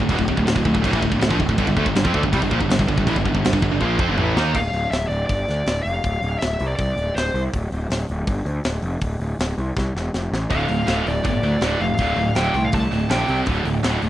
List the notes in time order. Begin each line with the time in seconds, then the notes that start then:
0.00 D2 A2
0.09 E1 E2 B2, kick, crash
0.19 D1 D2 A2, kick
0.28 D1 D2 A2, kick
0.37 D1 D2 A2, kick
0.46 D1 D2 A2, snare, crash
0.56 D1 D2 A2, kick
0.65 D1 D2 A2, kick
0.74 D1 D2 A2, kick
0.82 D1 D2 A2, kick, crash
0.92 A1 A2 E3, kick
1.01 D1 D2 A2, kick
1.12 D1 D2 A2, kick
1.20 D1 D2 A2, snare, crash
1.30 A#1 A#2 F3, kick
1.39 D1 D2 A2, kick
1.49 D1 D2 A2, kick
1.58 G1 G2 D3, kick, crash
1.67 G1 G2 D3, kick
1.77 D2 D3 A3, kick
1.86 G1 G2 D3, kick
1.95 G1 G2 D3, snare, crash
2.04 F2 F3 C4, kick
2.14 D2 D3 A3, kick
2.23 G1 G2 D3, kick
2.32 C2 C3 G3, kick, crash
2.42 G1 G2 D3, kick
2.51 A#1 A#2 F3, kick
2.60 G1 G2 D3, kick
2.69 G1 G2 D3, snare, crash
2.77 G1 G2 D3, kick
2.87 G1 G2 D3, kick
2.95 G1 G2 D3, kick
3.06 A1 A2 E3, kick, crash
3.15 G1 G2 D3, kick
3.25 G1 G2 D3, kick
3.33 G1 G2 D3, kick
3.42 G1 G2 D3, snare, crash
3.52 G1 G2 D3, kick
3.61 G1 G2 D3, kick
3.72 G1 G2 D3
3.80 A#1 A#2 F3 A#3, kick
3.99 F2 F3 C4, kick
4.08 G1 G2 D3
4.18 A1 A2 E3 A3, mid tom
4.36 D#2 D#3 A#3 D#4, snare
4.54 D1 F5, kick, crash
4.72 D1, open hi-hat
4.91 D1 E5, snare, open hi-hat
5.09 D1 D5, open hi-hat
5.26 G1 D5, kick, open hi-hat
5.48 D2, snare, open hi-hat
5.66 D1, snare, open hi-hat
5.83 F1 F5, open hi-hat
6.04 D1, kick, open hi-hat
6.22 D1, open hi-hat
6.39 D1 E5, snare, open hi-hat
6.59 C2, open hi-hat
6.68 D5
6.76 C2 D5, kick, open hi-hat
6.96 D1, open hi-hat
7.15 D1 C5, snare, open hi-hat
7.34 C2, open hi-hat
7.53 D1, kick, open hi-hat
7.72 D1, open hi-hat
7.90 D1, snare, open hi-hat
8.09 D1, open hi-hat
8.27 G1, kick, open hi-hat
8.46 D2, open hi-hat
8.64 D1, snare, open hi-hat
8.82 F1, open hi-hat
9.01 D1, kick, open hi-hat
9.20 D1, open hi-hat
9.39 D1, snare, open hi-hat
9.58 C2, open hi-hat
9.77 C2, kick, snare
9.95 E1, snare
10.14 F1, snare
10.32 A1, snare
10.50 D1 D2 A2 D3 F5, kick, open hi-hat
10.68 D1 D2 A2, open hi-hat
10.87 D1 D2 A2 D3, snare, open hi-hat
11.06 D1 D2 A2 D5, open hi-hat
11.24 G1 D2 A2 D5, kick, open hi-hat
11.42 D2 A2, open hi-hat
11.61 D1 D2 A2 D3, snare, open hi-hat
11.80 F1 D2 A2 F5, open hi-hat
11.98 D1 D2 A2 D3, kick, open hi-hat
12.16 D1 D2 A2, open hi-hat
12.35 D1 D2 A2 D3 G5, snare, open hi-hat
12.54 C2 D2 A2, open hi-hat
12.65 F5
12.72 C2 D2 A2 A5, kick, open hi-hat
12.91 D1 D2 A2, open hi-hat
13.10 A#1 D2 A2 D3 G5, snare, open hi-hat
13.28 C2 C3 G3 C4, open hi-hat
13.46 D1 D2 A2 D3, kick, open hi-hat
13.65 D1 D2 A2, open hi-hat
13.83 D1 D2 A2 D3, snare, open hi-hat
14.02 D1 D2 A2, open hi-hat